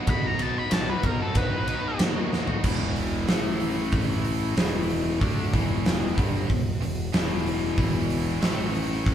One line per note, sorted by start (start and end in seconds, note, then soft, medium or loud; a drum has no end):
0.06 0.28 B1 loud
0.06 0.69 B2 medium
0.06 0.37 F#3 loud
0.06 0.38 B3 loud
0.06 0.39 D#4 loud
0.06 0.40 F#4 loud
0.06 kick loud
0.06 ride medium
0.10 0.27 B5 loud
0.27 0.42 A#5 medium
0.38 0.60 B1 medium
0.38 0.69 F#3 medium
0.38 0.56 B3 medium
0.38 0.55 D#4 medium
0.38 0.53 F#4 medium
0.38 ride medium
0.42 0.58 A5 medium
0.54 0.70 B3 medium
0.54 0.70 D#4 medium
0.54 0.71 F#4 medium
0.54 0.73 B5 medium
0.70 0.93 B1 loud
0.70 1.35 B2 loud
0.70 1.01 F#3 loud
0.70 1.02 B3 loud
0.70 1.03 D#4 loud
0.70 1.04 F#4 loud
0.70 0.88 A5 loud
0.70 snare loud
0.70 ride loud
0.88 1.03 B3 medium
0.88 1.04 D#4 medium
0.88 1.04 F#4 medium
0.88 1.06 B4 loud
1.03 1.24 B1 medium
1.03 1.65 F#3 medium
1.03 1.52 B3 medium
1.03 1.51 D#4 medium
1.03 1.49 F#4 medium
1.03 1.20 A#4 loud
1.03 muted overdriven electric guitar stroke soft
1.03 kick medium
1.03 ride medium
1.20 1.67 B3 medium
1.20 1.68 D#4 medium
1.20 1.69 F#4 medium
1.20 1.37 A4 medium
1.35 1.77 B1 loud
1.35 1.99 B4 loud
1.35 kick loud
1.35 ride medium
1.50 1.66 B3 medium
1.50 1.67 D#4 medium
1.50 1.68 F#4 medium
1.67 1.98 F#3 medium
1.67 1.84 B3 medium
1.67 1.83 D#4 medium
1.67 1.81 F#4 medium
1.67 ride medium
1.82 1.99 B3 medium
1.82 2.00 D#4 medium
1.82 2.00 F#4 medium
1.99 2.41 D#2 medium
1.99 2.48 B2 loud
1.99 2.29 F#3 loud
1.99 2.16 B3 loud
1.99 2.15 D#4 loud
1.99 2.13 F#4 loud
1.99 snare loud
1.99 ride loud
2.15 2.30 B3 medium
2.15 2.31 D#4 medium
2.15 2.31 F#4 medium
2.30 2.61 F#3 medium
2.30 2.48 B3 medium
2.30 2.47 D#4 medium
2.30 2.45 F#4 medium
2.30 snare medium
2.46 2.63 B3 medium
2.46 2.62 D#4 medium
2.46 2.61 F#4 medium
2.46 floor tom loud
2.63 3.24 E1 loud
2.63 3.27 E2 loud
2.63 3.27 B2 loud
2.63 3.27 E3 loud
2.63 kick loud
2.63 crash loud
2.96 open hi-hat medium
3.28 4.53 A1 loud
3.28 4.55 A2 loud
3.28 4.56 E3 medium
3.28 4.56 A3 loud
3.28 snare loud
3.28 open hi-hat medium
3.60 open hi-hat medium
3.92 kick loud
3.92 open hi-hat medium
4.25 open hi-hat medium
4.56 5.17 E1 medium
4.56 5.20 E2 medium
4.56 5.20 B2 loud
4.56 5.20 E3 loud
4.56 snare loud
4.56 open hi-hat medium
4.89 open hi-hat medium
5.21 5.51 D2 loud
5.21 5.52 D3 loud
5.21 5.52 A3 loud
5.21 5.52 D4 loud
5.21 kick loud
5.21 open hi-hat medium
5.52 6.14 E1 loud
5.52 6.16 E2 medium
5.52 6.16 B2 medium
5.52 6.17 E3 loud
5.52 kick loud
5.52 open hi-hat medium
5.86 snare loud
5.86 open hi-hat medium
6.16 6.47 G1 loud
6.16 6.48 G2 loud
6.16 6.48 D3 loud
6.16 6.48 G3 loud
6.16 kick loud
6.16 open hi-hat medium
6.49 6.79 E1 medium
6.49 6.75 E2 medium
6.49 6.75 B2 medium
6.49 kick medium
6.49 open hi-hat medium
6.81 7.11 E1 medium
6.81 7.07 E2 medium
6.81 7.07 B2 medium
6.81 open hi-hat medium
7.13 7.74 E1 medium
7.13 7.75 E2 medium
7.13 7.75 B2 loud
7.13 7.76 E3 loud
7.13 snare loud
7.13 open hi-hat medium
7.46 open hi-hat medium
7.76 8.38 E1 loud
7.76 8.40 E2 medium
7.76 8.39 B2 loud
7.76 8.39 E3 loud
7.76 kick loud
7.76 open hi-hat medium
8.10 open hi-hat medium
8.40 9.14 A1 medium
8.40 9.14 A2 loud
8.40 9.14 E3 loud
8.40 9.14 A3 medium
8.40 snare loud
8.40 open hi-hat medium
8.75 open hi-hat medium
9.06 kick loud
9.06 open hi-hat medium